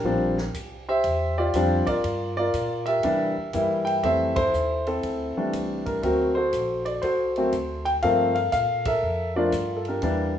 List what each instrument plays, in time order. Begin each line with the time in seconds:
Already playing: grand piano G4 A#4
0.04 upright bass A#1, grand piano F3 G3 C4 D4
0.38 snare
0.54 upright bass C2, kick, hi-hat pedal, ride
0.89 grand piano G4 C5 E5
1.04 upright bass E2, kick, ride
1.38 grand piano F4 G4 D5
1.54 upright bass F2, grand piano F3 G3 C4 D4, kick, hi-hat pedal, ride
1.87 grand piano F4 A#4 D5, kick, ride
2.04 upright bass G2, kick, ride
2.37 grand piano F4 A#4 D5
2.54 upright bass A#2, kick, hi-hat pedal, ride
2.86 grand piano G4 A#4 E5, ride
3.03 upright bass C3, grand piano E3 G3 A#3 D4, kick, ride
3.37 muted upright bass stroke
3.53 upright bass G2, grand piano E3 G3 A#3 E4, kick, hi-hat pedal, ride
3.85 grand piano G5, ride
4.03 upright bass F2, grand piano E3 G3 A3 C4 A4 C5 E5, kick, ride
4.36 grand piano E4 A4 C5, kick, ride
4.54 upright bass D#2, hi-hat pedal
4.87 grand piano C4 E4 A4, ride
5.03 upright bass D2, kick, ride
5.37 grand piano E3 G3 A3 D4
5.53 upright bass C2, kick, hi-hat pedal, ride
5.86 grand piano A#4, kick, ride
6.03 upright bass D2, grand piano F#3 A3 A#3 C4 F#4 A#4, kick, ride
6.35 grand piano F#4 A4 C5
6.53 upright bass A#1, kick, hi-hat pedal, ride
6.85 grand piano D5, ride
7.02 upright bass C2, grand piano F#4 A4 C5, kick, ride
7.36 grand piano F#3 A3 A#3 C4, ride
7.52 upright bass D2, kick, hi-hat pedal, ride
7.85 grand piano G5, ride
8.02 upright bass G2, grand piano F3 A3 A#3 C4 A4 A#4 F5, kick, ride
8.35 grand piano F5, ride
8.52 upright bass A#2, grand piano F5, kick, hi-hat pedal, ride
8.85 grand piano A4 A#4 E5, kick, ride
9.02 upright bass F2
9.36 grand piano F3 A3 A#3 D4 F4 A#4 D5
9.52 upright bass G2, kick, hi-hat pedal, ride
9.77 grand piano A4
9.85 grand piano D4 G4 A#4, ride
10.02 upright bass E2, grand piano E3 G3 A#3 D4, kick, ride